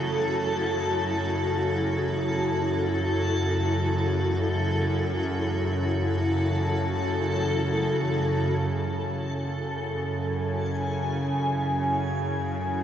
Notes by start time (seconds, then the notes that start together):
Already playing: F#2 C#3 E4 F#4 A4
8.60 F#2 C#3 G#5